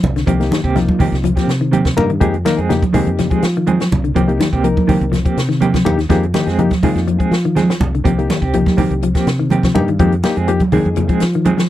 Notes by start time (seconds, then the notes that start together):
0.03 C2, closed hi-hat, high conga, low conga
0.16 D3, snare, closed hi-hat
0.26 C2 D#3 F3 A#3 C4 G4, kick, closed hi-hat, high conga
0.40 A#3 D#4 G4, snare, closed hi-hat
0.51 D#3, snare, closed hi-hat, high conga
0.64 C2 A#3 C4 G4, kick
0.75 F3 A#3 D#4 F4, snare, closed hi-hat, high conga, low conga
0.88 kick, high conga
0.99 D#3 A#3 C4 G4, kick, open hi-hat, high conga, low conga
1.12 C2, snare, closed hi-hat
1.24 F3, closed hi-hat, high conga, low conga
1.36 F3 A#3 C4 G4, kick, snare, closed hi-hat
1.47 C3, snare, closed hi-hat
1.61 D#3
1.72 D#3 A#3 C4 G4, closed hi-hat, high conga
1.85 kick, snare, closed hi-hat, high conga
1.97 G2 A#3 D#4 A#4, closed hi-hat, high conga, low conga
2.09 D#3, closed hi-hat
2.20 F2 D#3 F3 G#3 A#3 C4 D#4 G4 G#4, kick, closed hi-hat, high conga
2.34 closed hi-hat
2.45 D#3 A#3 D#4 A#4, snare, closed hi-hat, high conga
2.57 F2 G#3 C4 G#4, closed hi-hat
2.69 F3 A#3 D#4 G4, snare, closed hi-hat, high conga, low conga
2.82 kick, closed hi-hat, high conga
2.93 D#3 G#3 A#3 C4 D#4 G4 G#4, kick, open hi-hat, low conga
3.07 F2, closed hi-hat
3.18 F3, snare, closed hi-hat, high conga, low conga
3.30 F3 G#3 C4 G#4, kick, closed hi-hat
3.42 F3, snare, closed hi-hat
3.56 D#3, closed hi-hat
3.67 D#3 G#3 C4 G#4, closed hi-hat, high conga
3.80 muted clean electric guitar stroke, snare, closed hi-hat
3.91 C2, closed hi-hat, high conga, low conga
4.04 D3, closed hi-hat
4.15 C2 D#3 F3 A#3 C4 G4, kick, closed hi-hat, high conga
4.28 A#3 D#4 G4, closed hi-hat
4.40 D#3, snare, closed hi-hat, high conga
4.53 C2 A#3 C4 G4, kick
4.64 F3 A#3 D#4 A#4, closed hi-hat, high conga
4.77 kick, high conga
4.87 D#3 A#3 C4 G4, kick, open hi-hat, high conga, low conga
5.01 C2, closed hi-hat
5.12 F3, snare, closed hi-hat, high conga, low conga
5.25 F3 A#3 C4 G4, kick, closed hi-hat
5.37 C3, snare, closed hi-hat
5.49 D#3, snare
5.61 D#3 A#3 C4 G4, closed hi-hat, high conga
5.74 F3, kick, snare, closed hi-hat, high conga
5.85 D#2 A#3 D#4 G4, closed hi-hat, high conga, low conga
5.98 D#3, snare, closed hi-hat
6.09 F2 D#3 F3 G#3 A#3 C4 D#4 G4 G#4, kick, snare, closed hi-hat, high conga
6.23 closed hi-hat
6.34 D#3 A#3 D#4 G4, snare, closed hi-hat, high conga
6.46 F2 G#3 C4 G#4, snare, closed hi-hat
6.59 F3 A#3 D#4 G4, closed hi-hat, high conga, low conga
6.71 kick, snare, closed hi-hat, high conga
6.83 D#3 G#3 A#3 C4 D#4 F4 G#4, kick, open hi-hat, high conga, low conga
6.95 F2, snare, closed hi-hat
7.08 F3, closed hi-hat, high conga
7.19 F3 G#3 C4 G#4, kick, closed hi-hat
7.31 F3, snare, closed hi-hat
7.45 D#3, closed hi-hat
7.55 D#3 G#3 C4 G#4, snare, closed hi-hat, high conga
7.69 muted clean electric guitar stroke, snare, closed hi-hat
7.80 C2, closed hi-hat, high conga, low conga
7.95 D3, closed hi-hat
8.04 C2 D#3 F3 A#3 C4 G4, kick, closed hi-hat, high conga
8.19 A#3 D#4 G4, closed hi-hat
8.30 D#3, snare, closed hi-hat, high conga
8.41 C2 C4 G4, kick
8.53 F3 A#3 D#4 G4, closed hi-hat, high conga, low conga
8.66 kick, snare, high conga
8.77 D#3 A#3 C4 G4, kick, open hi-hat, high conga, low conga
8.91 C2, closed hi-hat
9.02 F3, closed hi-hat, high conga
9.15 F3 A#3 C4 G4, kick, snare, closed hi-hat
9.27 C3, snare, closed hi-hat
9.39 D#3
9.50 D#3 A#3 C4 G4, closed hi-hat, high conga
9.63 F3, kick, snare, closed hi-hat
9.74 G2 A#3 D#4 G4, closed hi-hat, high conga, low conga
9.88 D#3, closed hi-hat
9.99 F2 D#3 F3 G#3 A#3 C4 D#4 G4, muted clean electric guitar stroke, kick, closed hi-hat
10.12 closed hi-hat
10.23 A#3 D#4 G4, muted clean electric guitar stroke, snare, closed hi-hat, high conga
10.36 F2 G#3 C4 G#4, closed hi-hat
10.48 F3 A#3 D#4 G4, closed hi-hat, high conga
10.60 kick, closed hi-hat, high conga
10.72 D#3 G#3 A#3 C4 D#4 G#4, kick, open hi-hat, low conga
10.85 F2, closed hi-hat
10.96 F3, closed hi-hat, high conga, low conga
11.08 F3 G#3 C4 G#4, kick, closed hi-hat
11.20 F3, snare, closed hi-hat
11.33 D#3, closed hi-hat
11.45 D#3 G#3 C4 G#4, closed hi-hat, high conga
11.57 F3, snare, closed hi-hat